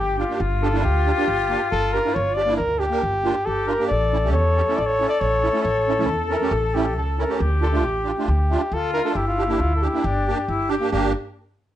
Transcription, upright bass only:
Already playing: G1
0.40 G1
0.84 D2
1.28 G1
1.72 G1
2.16 G1
2.60 D2
3.03 G1
3.47 G1
3.91 A1
4.35 E2
4.78 A1
5.21 A1
5.65 A1
6.08 E2
6.51 A1
6.96 C#2
7.40 D2
7.84 A1
8.28 D2
8.72 D2
9.15 G1
9.59 D2
10.04 G1
10.48 G1
10.92 G1

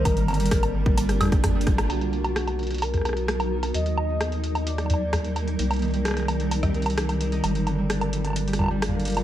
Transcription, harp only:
Already playing: D#3 D#4 G4
0.05 G3
0.17 G3
0.28 D3
0.40 G3
0.51 D4
0.74 G3
0.86 D4
1.09 G4
1.21 G3
1.32 G4
1.44 D4
1.55 G3
1.67 G3
1.78 D4
5.59 G3
5.71 G3
5.82 D#3
5.94 G3
6.05 D#4
6.28 G3
6.40 D4
6.63 G4
6.75 D#3
6.98 G3
7.09 G4
7.21 D#3
7.32 D#4
7.44 G3
7.55 G3
7.67 D3
7.78 G3
7.90 D4
8.13 G3
8.25 D4
8.48 G4
8.59 G3
8.71 G3
8.82 A#3
8.94 D3
9.05 G3
9.17 G2

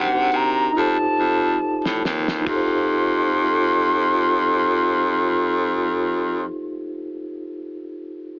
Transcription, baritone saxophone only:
Already playing: C3
0.33 C3
0.76 F2
1.00 F2
1.19 F2
1.85 A2
2.05 D#2
2.47 F2

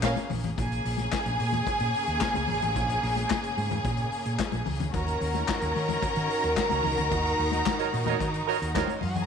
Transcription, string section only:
Already playing: C#3 A#3 G#4
0.57 C#3 A#3 G#4
4.95 D#3 C#4 F#4
7.12 D#4

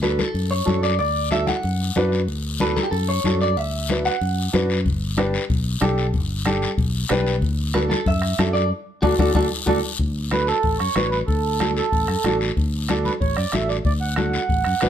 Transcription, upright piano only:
0.02 D4 F#4 A4
0.66 D4 F#4 A4
1.31 D4 F#4 A4
1.96 D4 F#4 B4
2.60 D4 F#4 A4
3.25 D4 F#4 A4
3.89 D4 F#4 B4
4.53 D4 F#4 B4
5.17 D4 G4 B4
5.81 D4 G4 A4
6.45 D4 G4 A4
7.10 D4 G4 B4
7.74 D4 F#4 A4
8.38 D4 F#4 A4
9.03 D4 F#4 A4
9.19 D4 F#4 A4
9.36 D4 F#4 A4
9.68 D4 F#4 A4
10.31 D4 F#4 A4
10.96 D4 F#4 B4
11.60 D4 F#4 A4
12.25 D4 F#4 A4
12.89 D4 F#4 A4
13.53 D4 F#4 A4
14.17 D4 F#4 A4
14.82 D4 F#4 B4

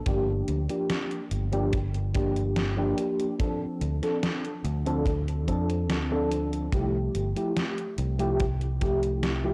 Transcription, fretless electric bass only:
0.06 G1
0.48 D2
1.31 G1
3.81 D2
4.64 D2
5.48 F2
5.89 D2
6.72 C2
7.15 G1
7.98 C2

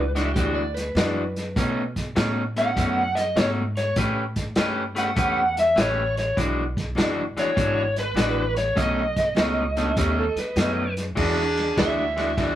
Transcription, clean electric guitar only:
0.15 E3 G#3 D4 F#4
0.36 E3 G#3 D4 F#4
0.97 E3 G#3 D4 F#4
1.56 B2 A3 C#4 D#4
2.16 B2 A3 C#4 D#4
2.56 B2 A3 C#4 D#4
2.76 B2 A3 C#4 D#4
3.36 B2 A3 C#4 D#4
3.97 A3 C#4 G4 B4
4.56 A3 C#4 G4 B4
4.95 A3 C#4 G4 B4
5.16 A3 C#4 G4 B4
5.76 A3 C#4 G4 B4
6.37 E3 G#3 D4 F#4
6.96 E3 G#3 D4 F#4
7.37 E3 G#3 D4 F#4
7.56 E3 G#3 D4 F#4
8.16 E3 G#3 D4 F#4
8.76 B2 A3 C#4 D#4
9.36 B2 A3 C#4 D#4
9.77 B2 A3 C#4 D#4
9.97 B2 A3 C#4 D#4
10.58 B2 A3 C#4 D#4
11.15 E3 G#3 D4 F#4
11.76 E3 G#3 D4 F#4
12.16 E3 G#3 D4 F#4
12.37 E3 G#3 D4 F#4

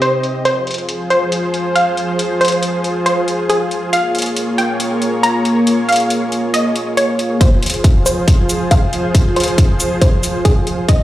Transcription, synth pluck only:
0.02 C5
0.45 C5
1.10 C5
1.76 F5
2.41 C5
3.06 C5
3.50 G#4
3.93 F5
4.58 G5
5.23 A#5
5.89 F5
6.54 D#5
6.97 C#5
7.41 C5
8.06 C5
8.71 F5
9.36 C5
10.02 C5
10.45 G#4
10.88 D#5

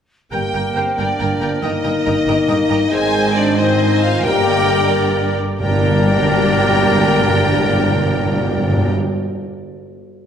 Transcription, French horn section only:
0.31 G4
0.76 C4
0.97 D4
1.63 D#4
2.91 G#4
3.34 D4
3.56 D#4
4.02 F4
4.24 G4
5.61 G4

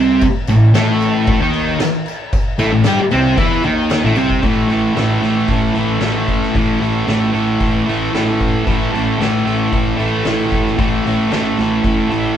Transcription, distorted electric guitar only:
Already playing: C3 C4
0.49 A2
0.74 A2 A3
1.41 D#3 D#4
1.80 muted distorted electric guitar stroke
2.59 A2 A3
2.72 A2
2.86 G3 G4
3.00 muted distorted electric guitar stroke
3.11 C3 C4
3.37 E3 E4
3.64 D#3 D#4
4.04 A2 A3
4.17 C3 C4
4.43 A2 E3 A3
4.70 E3 A3
4.95 A2 E3 A3
5.22 E3 A3
5.75 E3 A3
6.01 A2 E3 A3
6.55 A2 E3 A3
6.80 E3 A3
7.07 A2 E3 A3
7.33 E3 A3
7.86 E3 A3
8.12 A2 E3 A3
8.65 A2 E3 A3
8.92 E3 A3
9.18 A2 E3 A3
9.45 E3 A3
9.97 E3 A3
10.24 A2 E3 A3
10.77 A2 E3 A3
11.05 E3 A3
11.31 A2 E3 A3
11.58 E3 A3
12.10 E3 A3

